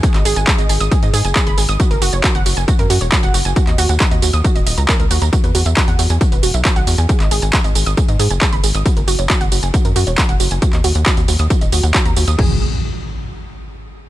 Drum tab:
CC |----------------|----------------|----------------|----------------|
HH |xxoxxxoxxxoxxxox|xxoxxxoxxxoxxxox|xxoxxxoxxxoxxxox|xxoxxxoxxxoxxxox|
TB |xxxxxxxxxxxxxxxx|xxxxxxxxxxxxxxxx|xxxxxxxxxxxxxxxx|xxxxxxxxxxxxxxxx|
CP |-x--x-------x---|----x-------x---|-x--x-------x---|----x-------x---|
BD |o---o---o---o---|o---o---o---o---|o---o---o---o---|o---o---o---o---|

CC |----------------|----------------|----------------|x---------------|
HH |xxoxxxoxxxoxxxox|xxoxxxoxxxoxxxox|xxoxxxoxxxoxxxox|----------------|
TB |xxxxxxxxxxxxxxxx|xxxxxxxxxxxxxxxx|xxxxxxxxxxxxxxxx|----------------|
CP |-x--x-------x---|----x-------x---|-x--x-------x---|----------------|
BD |o---o---o---o---|o---o---o---o---|o---o---o---o---|o---------------|